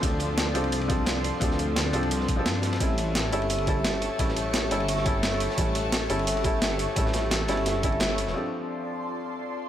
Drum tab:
RD |x-x-x-xxxxx-x-x-|x-x-x-xxx-x-xxxx|x-x-x-xxxxx-x-x-|x-x-x-xxx-x-xxx-|
HH |x-x-x-x-x-x-x-x-|x-x-x-x-x-x-x-x-|x-x-x-x-x-x-x-x-|x-x-x-x-x-x-x-x-|
TB |----------------|----------------|----------------|----------------|
SD |----o-------o---|-o--o----o--o-oo|----o-------o---|-o--o----o--o--o|
BD |o---------o-----|o---------o-----|o---------o-----|o---------o-----|

RD |x-x-x-xxxxx-x-x-|x-x-x-xxx-xxxxx-|----------------|
HH |x-x-x-x-x-x-x-x-|x-x-x-x-x-x-x-x-|----------------|
TB |----------------|----------------|--x--xx--xx---x-|
SD |----o-------o---|-oo-o-o-o---o--o|----------------|
BD |o---------o-----|o---------o-----|----------------|